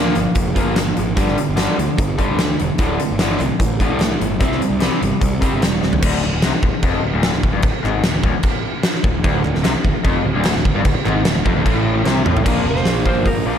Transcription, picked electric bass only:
Already playing: D2
0.16 G1
0.35 F1
0.65 G1
0.98 G#1
1.17 G1
1.49 G1
1.79 D2
1.98 G1
2.29 D2
2.61 E1
2.79 D1
3.11 G1
3.40 C2
3.60 A1
3.89 C2
4.20 G1
4.41 C2
4.70 C2
5.02 G1
5.22 C2
5.53 G1
5.63 E1
5.83 D1
6.03 D1
6.24 D1
6.33 D1
6.43 C2
6.53 muted picked electric bass stroke
6.63 D1
6.73 muted picked electric bass stroke
6.82 F1
7.03 D1
7.13 D1
7.33 D1
7.43 D1
7.54 G1
7.63 D1
7.73 muted picked electric bass stroke
7.84 G#1
8.04 D1
8.14 D1
8.23 D1
9.04 D1
9.25 D1
9.45 D1
9.55 D1
9.66 C2
9.75 muted picked electric bass stroke
9.84 D1
9.94 muted picked electric bass stroke
10.04 F1
10.24 D1
10.36 D1
10.55 D1
10.65 D1
10.75 G1
10.85 D1
10.97 muted picked electric bass stroke
11.07 G#1
11.26 D1
11.36 D1
11.45 F1
11.57 D1
11.65 A1
12.06 C2
12.26 A1
12.46 A#1
12.64 F1
12.85 A#1
13.15 G1
13.45 A#1

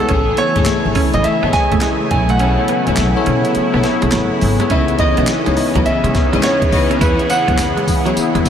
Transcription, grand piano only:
Already playing: A4
0.38 C#5
1.14 D#5
1.24 E5
1.53 G#5
2.11 G#5
2.30 F#5
4.71 E5
4.99 D#5
5.85 E5
6.43 C#5
7.02 B4
7.30 F#5

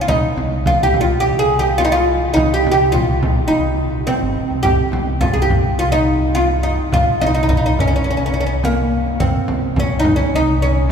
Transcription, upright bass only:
0.08 C2
0.36 C2
1.22 C2
2.36 C2
2.64 C2
3.50 C2
4.21 G1
4.36 A#1
4.50 C2
4.64 C2
4.93 C2
5.78 C2
6.92 C2
7.21 C2
8.07 C2
9.20 C2
9.49 C2
10.34 C2

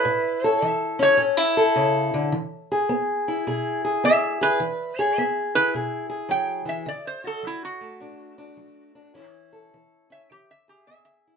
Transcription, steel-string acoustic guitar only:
Already playing: E4
0.05 A2
0.44 A4
0.62 E3
0.99 C#4
1.17 A2 C#4
1.37 E4
1.57 A4
1.75 C#3
2.14 D3
2.32 E3
2.72 G#4
2.89 B3
3.28 E4
3.47 B2 G#4
3.85 G#4
4.04 B3
4.41 G#4
4.60 E3
4.99 G#4
5.18 B3
5.55 E4
5.74 B2 G#4
6.10 G#4
6.29 F#3
6.65 E3
6.86 D3
7.24 F#4
7.43 F#3
7.81 A3
8.00 A2 D4
8.38 D4
8.57 F#3
8.95 D4
9.14 A2 E3 C#4 E4
9.53 A4
9.74 E3
10.10 C#4
10.31 E3
10.68 G#4
10.87 B3
11.27 E4

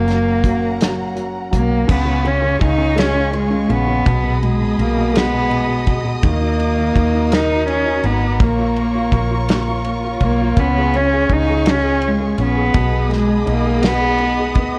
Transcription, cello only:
Already playing: A#3
1.55 A#3
1.91 B3
2.27 C#4
2.63 D#4
2.98 C#4
3.35 G#3
3.72 B3
4.44 G#3
4.81 A#3
5.17 B3
6.25 A#3
7.34 D#4
7.70 C#4
8.05 B3
8.41 A#3
10.23 A#3
10.59 B3
10.96 C#4
11.32 D#4
11.69 C#4
12.07 G#3
12.43 B3
13.16 G#3
13.52 A#3
13.87 B3

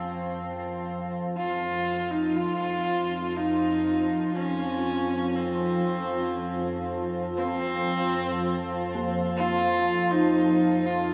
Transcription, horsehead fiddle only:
Already playing: C4
1.36 F4
2.10 D#4
2.37 F4
3.36 D#4
4.35 C#4
5.35 C4
7.37 C4
9.37 F4
10.11 D#4
10.85 F4

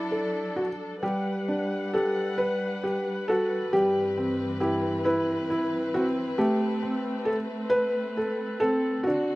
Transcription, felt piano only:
Already playing: E4 D5
0.11 A4
0.56 F#4
1.03 G3 G4
1.48 D4
1.93 G4 A4
2.38 B4
2.83 G4
3.28 F#4 A4
3.73 G3 G4
4.18 C4
4.60 E4 G4
5.05 E4 B4
5.50 E4
5.94 C4 F#4
6.38 A3 G4
6.83 C4
7.25 A4
7.70 B4
8.17 A4
8.60 C4 A4
9.03 D4 F#4

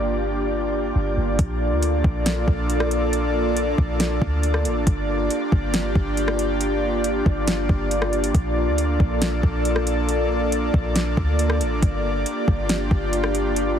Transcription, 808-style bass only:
Already playing: G1
0.95 G1
1.17 G1
1.39 A#1
1.71 D2
2.04 A#1
2.48 A#1
3.78 A#1
4.22 D2
4.65 A1
4.87 G1
5.52 G1
5.95 G1
7.26 G1
7.69 G1
8.35 A#1
8.67 D2
9.00 A#1
9.43 A#1
10.74 A#1
11.17 D2
11.61 A1
11.83 G1
12.48 G1
12.91 G1

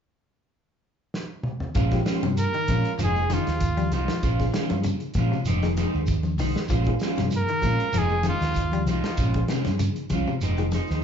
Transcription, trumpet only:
2.39 A#4
3.03 G#4
3.33 F4
3.94 F4
7.37 A#4
7.98 G#4
8.28 F4
8.91 F4

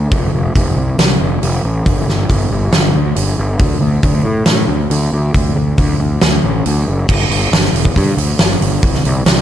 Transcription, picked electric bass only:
0.12 F1
0.33 F1
0.56 F1
0.77 C2
0.98 C2
1.20 F1
1.42 F1
1.64 A1
1.87 G1
2.08 G1
2.29 G1
2.52 G1
2.73 G1
2.95 D2
3.16 G1
3.38 G1
3.60 D2
3.81 D2
4.03 D2
4.24 A2
4.46 A2
4.68 D2
4.90 D2
5.13 D2
5.34 D2
5.56 D2
5.78 D2
6.00 D2
6.22 D2
6.44 A1
6.66 D2
6.88 F#1
7.09 G1
7.30 G1
7.52 G1
7.73 E1
7.97 G2
8.17 D2
8.40 G1
8.61 G1
8.83 C2
9.05 C2
9.26 C2

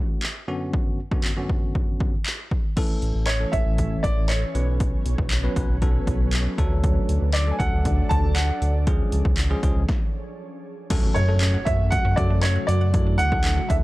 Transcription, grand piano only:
3.26 C#5
3.52 E5
4.03 D5
4.28 C#5
7.33 D5
7.51 G#5
7.59 F#5
8.09 A5
8.35 F#5
11.14 C#5
11.65 E5
11.90 F#5
12.16 D5
12.42 C#5
12.67 D5
13.18 F#5
13.69 E5

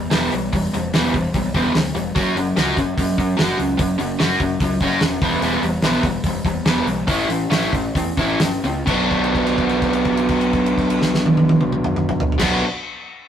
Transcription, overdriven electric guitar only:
0.11 E3 G3 B3
0.33 E3 G3
0.53 E3 G3
0.74 E3 G3
0.94 E3 G3 B3
1.14 E3 G3
1.35 E3 G3
1.55 E3 G3 B3
1.76 E3 G3
1.95 E3 G3
2.15 F#3 C#4 F#4
2.37 F#3 C#4
2.56 F#3 C#4 F#4
2.77 F#3 C#4
2.98 F#3 C#4
3.18 F#3 C#4
3.37 F#3 C#4 F#4
3.58 F#3 C#4
3.78 F#3 C#4
3.99 F#3 C#4
4.20 F#3 C#4 F#4
4.41 F#3 C#4
4.62 F#3 C#4
4.82 F#3 C#4 F#4
5.02 F#3 C#4
5.22 E3 G3 B3
5.43 E3 G3 B3
5.64 E3 G3
5.84 E3 G3 B3
6.04 E3 G3
6.27 E3 G3
6.46 E3 G3
6.66 E3 G3 B3
6.87 E3 G3
7.07 A3 C#4 E4
7.29 A3 C#4
7.50 A3 C#4 E4
7.73 A3 C#4
7.95 A3 C#4
8.18 A3 C#4 E4
8.41 A3 C#4
8.64 A3 C#4
8.86 B2 F#3 B3 D4 F#4
12.38 B2 F#3 B3 D4
12.42 F#4

